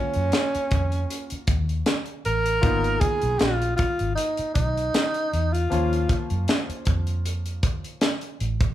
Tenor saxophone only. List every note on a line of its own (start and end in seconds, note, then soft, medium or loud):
0.00 1.45 C#4 medium
2.26 3.01 A#4 loud
3.00 3.40 G#4 medium
3.39 3.76 F4 loud
3.76 4.13 F4 medium
4.15 4.52 D#4 medium
4.54 5.54 D#4 medium
5.53 6.30 F4 medium